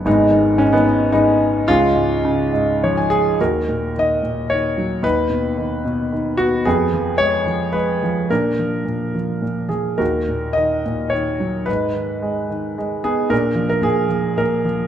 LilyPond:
<<
  \new Staff \with { instrumentName = "Grand piano" } { \time 3/4 \key cis \mixolydian \tempo 4 = 109 << { r2. | r2 cis''16 gis''8. | \key ees \minor r2. | r2. |
r2. | r2. | r2. | r2. |
r2. | } \\ { dis'4 cis'16 b8. dis'4 | eis'2~ eis'8 gis'8 | bes'4 ees''4 des''4 | b'2~ b'8 fis'8 |
aes'4 des''4 ces''4 | bes'2~ bes'8 aes'8 | bes'4 ees''4 des''4 | ces''2~ ces''8 aes'8 |
bes'8. bes'16 aes'4 bes'4 | } >> }
  \new Staff \with { instrumentName = "Grand piano" } { \clef bass \time 3/4 \key cis \mixolydian << { <gis b>4~ <gis b>16 <dis gis>8. <gis b>4 | <gis cis'>2~ <gis cis'>8 r8 | \key ees \minor ges'4. r4. | dis'2~ dis'8 r8 |
ces'4. r4. | d'2~ d'8 r8 | ges'4. r4. | ees'2~ ees'8 r8 |
d'4. r4. | } \\ { <gis,, gis,>8 dis8 gis,8 dis8 gis,4 | cis,8 gis,8 cis8 gis,8 eis4 | ees,8 bes,8 ees8 bes,8 ees8 ges8 | dis,8 b,8 dis8 b,8 dis8 b8 |
f,8 f8 aes8 f8 aes8 f8 | bes,8 f8 bes,8 f8 bes,8 f8 | ees,8 bes,8 ees8 bes,8 ees8 ges8 | aes,8 ees8 aes8 ees8 aes8 ces'8 |
bes,8 f8 bes,8 f8 bes,8 f8 | } >> }
>>